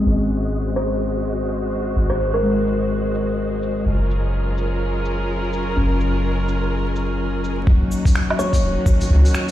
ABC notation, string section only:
X:1
M:4/4
L:1/8
Q:"Swing 16ths" 1/4=126
K:Ebdor
V:1 name="String section"
[A,Gc]8- | [A,Gc]8 | [G,DFAB]8- | [G,DFAB]8 |
[E,B,DEG]8 |]